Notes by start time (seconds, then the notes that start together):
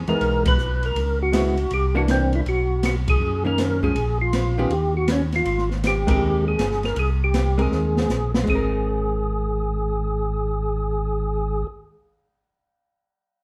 0.07 E2 E3 G#3 B3 D#4 A#4, ride
0.21 B1, ride
0.45 B4, kick, ride
0.59 hi-hat pedal
0.83 A#4, ride
0.95 C#2, ride
1.22 F#4
1.32 G#3 B3 E4, snare, hi-hat pedal, ride
1.57 ride
1.70 C2 G4, ride
1.95 E3 A#3 D4 F#4
2.08 C4, snare, hi-hat pedal, ride
2.33 E4, ride
2.46 B1 F#4, ride
2.83 F#4, snare, hi-hat pedal, ride
3.08 G#4, kick, ride
3.20 F#2
3.45 D#3 A#3 C#4 A#4
3.58 snare, hi-hat pedal, ride
3.83 F3 G#3 C#4 G#4, kick
3.95 A#1, ride
4.22 F4
4.33 snare, hi-hat pedal, ride
4.58 D#3 B3 C#4 G4
4.70 D#2 G4, ride
4.97 F#4
5.08 C#4, snare, hi-hat pedal, ride
5.32 F4, snare, ride
5.45 G#1, ride
5.58 snare
5.71 snare
5.84 G4, snare, hi-hat pedal, ride
6.07 G#3 C4 G4 A#4, kick, ride
6.21 D#2
6.48 G#4
6.58 G1, snare, hi-hat pedal, ride
6.72 snare
6.83 A#4, snare, ride
6.96 C2 G#4, ride
7.24 G4
7.34 snare, hi-hat pedal, ride
7.58 G#3 C4 A#4, ride
7.62 G#4
7.71 D#2, snare
7.97 snare
8.09 A#1, snare, hi-hat pedal
8.34 snare
8.44 G#1 G#3, kick, crash
8.48 C4 G#4
8.55 A#4